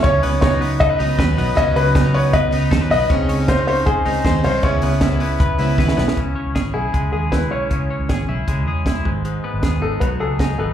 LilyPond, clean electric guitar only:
\new Staff \with { instrumentName = "Clean electric guitar" } { \time 4/4 \key cis \minor \tempo 4 = 156 cis8 b8 dis'8 b8 a'16 b'16 dis'8 b'8 b8 | cis8 b8 dis'8 b8 b'8 dis'8 a'16 b'16 b8 | cis8 cis'8 dis'8 cis'8 bis'8 dis'8 bis'8 cis'8 | cis8 b8 e'8 b8 b'8 e'8 b'8 b8 |
cis8 cis'8 gis'8 e'8 gis8 gis'8 e'8 cis'8 | cis8 cis'8 gis'8 e'8 gis8 gis'8 e'8 gis,8 | gis,8 b8 gis'8 dis'8 fis8 gis'8 dis'8 b8 | }